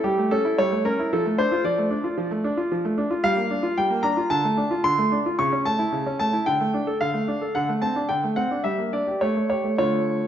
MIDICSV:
0, 0, Header, 1, 2, 480
1, 0, Start_track
1, 0, Key_signature, -1, "minor"
1, 0, Tempo, 534759
1, 996, Time_signature, 4, 2, 24, 8
1, 5794, Tempo, 548446
1, 7714, Tempo, 571973
1, 9078, End_track
2, 0, Start_track
2, 0, Title_t, "Grand piano"
2, 0, Program_c, 0, 0
2, 35, Note_on_c, 0, 67, 66
2, 37, Note_on_c, 0, 55, 51
2, 151, Note_off_c, 0, 55, 0
2, 163, Note_on_c, 0, 57, 47
2, 274, Note_off_c, 0, 67, 0
2, 281, Note_on_c, 0, 69, 72
2, 284, Note_off_c, 0, 57, 0
2, 286, Note_on_c, 0, 61, 47
2, 404, Note_on_c, 0, 64, 50
2, 406, Note_off_c, 0, 61, 0
2, 517, Note_off_c, 0, 69, 0
2, 525, Note_off_c, 0, 64, 0
2, 525, Note_on_c, 0, 73, 81
2, 526, Note_on_c, 0, 55, 54
2, 637, Note_off_c, 0, 55, 0
2, 643, Note_on_c, 0, 57, 45
2, 760, Note_off_c, 0, 73, 0
2, 763, Note_on_c, 0, 70, 73
2, 765, Note_off_c, 0, 57, 0
2, 769, Note_on_c, 0, 61, 50
2, 889, Note_off_c, 0, 61, 0
2, 892, Note_on_c, 0, 64, 47
2, 977, Note_off_c, 0, 70, 0
2, 1005, Note_off_c, 0, 64, 0
2, 1013, Note_on_c, 0, 69, 65
2, 1014, Note_on_c, 0, 53, 63
2, 1122, Note_off_c, 0, 53, 0
2, 1132, Note_on_c, 0, 57, 48
2, 1243, Note_on_c, 0, 72, 80
2, 1244, Note_on_c, 0, 62, 46
2, 1245, Note_off_c, 0, 69, 0
2, 1251, Note_off_c, 0, 57, 0
2, 1364, Note_on_c, 0, 65, 51
2, 1366, Note_off_c, 0, 62, 0
2, 1455, Note_off_c, 0, 72, 0
2, 1476, Note_on_c, 0, 53, 53
2, 1477, Note_on_c, 0, 74, 68
2, 1485, Note_off_c, 0, 65, 0
2, 1591, Note_off_c, 0, 53, 0
2, 1600, Note_on_c, 0, 57, 48
2, 1711, Note_on_c, 0, 62, 51
2, 1721, Note_off_c, 0, 57, 0
2, 1831, Note_on_c, 0, 65, 49
2, 1836, Note_off_c, 0, 62, 0
2, 1953, Note_on_c, 0, 53, 57
2, 1955, Note_off_c, 0, 65, 0
2, 2067, Note_off_c, 0, 53, 0
2, 2075, Note_on_c, 0, 57, 48
2, 2193, Note_on_c, 0, 62, 53
2, 2197, Note_off_c, 0, 57, 0
2, 2311, Note_on_c, 0, 65, 50
2, 2316, Note_off_c, 0, 62, 0
2, 2434, Note_off_c, 0, 65, 0
2, 2439, Note_on_c, 0, 53, 55
2, 2548, Note_off_c, 0, 53, 0
2, 2556, Note_on_c, 0, 57, 49
2, 2629, Note_off_c, 0, 74, 0
2, 2672, Note_on_c, 0, 62, 50
2, 2675, Note_off_c, 0, 57, 0
2, 2788, Note_on_c, 0, 65, 50
2, 2793, Note_off_c, 0, 62, 0
2, 2904, Note_off_c, 0, 65, 0
2, 2905, Note_on_c, 0, 77, 86
2, 2907, Note_on_c, 0, 55, 67
2, 3020, Note_off_c, 0, 55, 0
2, 3021, Note_on_c, 0, 58, 48
2, 3146, Note_on_c, 0, 62, 46
2, 3147, Note_off_c, 0, 58, 0
2, 3258, Note_on_c, 0, 65, 49
2, 3270, Note_off_c, 0, 62, 0
2, 3383, Note_off_c, 0, 77, 0
2, 3386, Note_off_c, 0, 65, 0
2, 3389, Note_on_c, 0, 79, 79
2, 3392, Note_on_c, 0, 55, 54
2, 3503, Note_off_c, 0, 55, 0
2, 3504, Note_on_c, 0, 58, 50
2, 3602, Note_off_c, 0, 79, 0
2, 3616, Note_on_c, 0, 82, 81
2, 3623, Note_on_c, 0, 62, 48
2, 3629, Note_off_c, 0, 58, 0
2, 3743, Note_on_c, 0, 65, 49
2, 3749, Note_off_c, 0, 62, 0
2, 3835, Note_off_c, 0, 82, 0
2, 3860, Note_on_c, 0, 81, 88
2, 3863, Note_off_c, 0, 65, 0
2, 3863, Note_on_c, 0, 50, 64
2, 3980, Note_off_c, 0, 50, 0
2, 3989, Note_on_c, 0, 57, 47
2, 4105, Note_on_c, 0, 62, 50
2, 4112, Note_off_c, 0, 57, 0
2, 4226, Note_on_c, 0, 65, 51
2, 4230, Note_off_c, 0, 62, 0
2, 4306, Note_off_c, 0, 81, 0
2, 4345, Note_on_c, 0, 50, 53
2, 4345, Note_on_c, 0, 84, 95
2, 4351, Note_off_c, 0, 65, 0
2, 4461, Note_off_c, 0, 50, 0
2, 4470, Note_on_c, 0, 57, 46
2, 4594, Note_off_c, 0, 57, 0
2, 4594, Note_on_c, 0, 62, 44
2, 4634, Note_off_c, 0, 84, 0
2, 4716, Note_off_c, 0, 62, 0
2, 4722, Note_on_c, 0, 65, 48
2, 4834, Note_off_c, 0, 65, 0
2, 4835, Note_on_c, 0, 85, 77
2, 4837, Note_on_c, 0, 49, 63
2, 4948, Note_off_c, 0, 49, 0
2, 4960, Note_on_c, 0, 61, 46
2, 5072, Note_off_c, 0, 85, 0
2, 5076, Note_on_c, 0, 81, 79
2, 5079, Note_on_c, 0, 57, 43
2, 5080, Note_off_c, 0, 61, 0
2, 5196, Note_on_c, 0, 64, 49
2, 5200, Note_off_c, 0, 57, 0
2, 5317, Note_on_c, 0, 49, 53
2, 5319, Note_off_c, 0, 64, 0
2, 5430, Note_off_c, 0, 49, 0
2, 5444, Note_on_c, 0, 61, 46
2, 5519, Note_off_c, 0, 81, 0
2, 5561, Note_on_c, 0, 81, 80
2, 5563, Note_off_c, 0, 61, 0
2, 5565, Note_on_c, 0, 57, 48
2, 5681, Note_on_c, 0, 64, 47
2, 5684, Note_off_c, 0, 57, 0
2, 5797, Note_off_c, 0, 64, 0
2, 5797, Note_off_c, 0, 81, 0
2, 5800, Note_on_c, 0, 79, 81
2, 5805, Note_on_c, 0, 50, 56
2, 5913, Note_off_c, 0, 50, 0
2, 5925, Note_on_c, 0, 57, 46
2, 6042, Note_on_c, 0, 62, 45
2, 6043, Note_off_c, 0, 57, 0
2, 6158, Note_on_c, 0, 69, 47
2, 6161, Note_off_c, 0, 62, 0
2, 6237, Note_off_c, 0, 79, 0
2, 6277, Note_on_c, 0, 77, 75
2, 6279, Note_off_c, 0, 69, 0
2, 6282, Note_on_c, 0, 50, 52
2, 6391, Note_off_c, 0, 50, 0
2, 6391, Note_on_c, 0, 57, 43
2, 6514, Note_off_c, 0, 57, 0
2, 6515, Note_on_c, 0, 62, 43
2, 6634, Note_on_c, 0, 69, 42
2, 6636, Note_off_c, 0, 62, 0
2, 6748, Note_off_c, 0, 77, 0
2, 6749, Note_off_c, 0, 69, 0
2, 6751, Note_on_c, 0, 78, 74
2, 6757, Note_on_c, 0, 50, 59
2, 6867, Note_off_c, 0, 50, 0
2, 6874, Note_on_c, 0, 57, 44
2, 6893, Note_off_c, 0, 78, 0
2, 6985, Note_on_c, 0, 81, 69
2, 6990, Note_on_c, 0, 60, 40
2, 6995, Note_off_c, 0, 57, 0
2, 7111, Note_on_c, 0, 62, 44
2, 7113, Note_off_c, 0, 60, 0
2, 7202, Note_off_c, 0, 81, 0
2, 7222, Note_on_c, 0, 79, 66
2, 7225, Note_on_c, 0, 50, 47
2, 7235, Note_off_c, 0, 62, 0
2, 7343, Note_off_c, 0, 50, 0
2, 7354, Note_on_c, 0, 57, 42
2, 7368, Note_off_c, 0, 79, 0
2, 7463, Note_on_c, 0, 78, 69
2, 7468, Note_on_c, 0, 60, 45
2, 7478, Note_off_c, 0, 57, 0
2, 7593, Note_on_c, 0, 62, 41
2, 7595, Note_off_c, 0, 60, 0
2, 7684, Note_off_c, 0, 78, 0
2, 7704, Note_on_c, 0, 76, 64
2, 7709, Note_on_c, 0, 55, 50
2, 7713, Note_off_c, 0, 62, 0
2, 7824, Note_off_c, 0, 55, 0
2, 7826, Note_on_c, 0, 58, 37
2, 7942, Note_off_c, 0, 76, 0
2, 7950, Note_on_c, 0, 74, 62
2, 7951, Note_off_c, 0, 58, 0
2, 7951, Note_on_c, 0, 62, 40
2, 8072, Note_off_c, 0, 62, 0
2, 8072, Note_on_c, 0, 67, 40
2, 8161, Note_off_c, 0, 74, 0
2, 8186, Note_off_c, 0, 67, 0
2, 8186, Note_on_c, 0, 73, 60
2, 8192, Note_on_c, 0, 57, 51
2, 8299, Note_off_c, 0, 57, 0
2, 8312, Note_on_c, 0, 57, 39
2, 8413, Note_off_c, 0, 73, 0
2, 8426, Note_on_c, 0, 73, 57
2, 8428, Note_on_c, 0, 67, 35
2, 8433, Note_off_c, 0, 57, 0
2, 8545, Note_on_c, 0, 57, 36
2, 8552, Note_off_c, 0, 67, 0
2, 8643, Note_off_c, 0, 73, 0
2, 8659, Note_off_c, 0, 57, 0
2, 8667, Note_on_c, 0, 73, 68
2, 8668, Note_on_c, 0, 65, 36
2, 8669, Note_on_c, 0, 50, 44
2, 8672, Note_on_c, 0, 57, 37
2, 9009, Note_off_c, 0, 50, 0
2, 9057, Note_off_c, 0, 65, 0
2, 9059, Note_off_c, 0, 57, 0
2, 9078, Note_off_c, 0, 73, 0
2, 9078, End_track
0, 0, End_of_file